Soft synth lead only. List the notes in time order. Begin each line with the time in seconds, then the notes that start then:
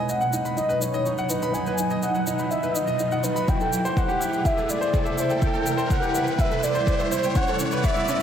Already playing: G#5
0.10 F#5
0.57 D#5
0.82 C#5
1.29 B4
1.53 G#5
2.02 F#5
2.51 E5
2.75 D#5
3.23 B4
3.49 G5
3.97 F#5
4.46 E5
4.70 D5
5.20 C5
5.43 G5
5.91 F#5
6.40 E5
6.63 D5
7.11 C5
7.36 F#5
7.78 F#5
7.85 E5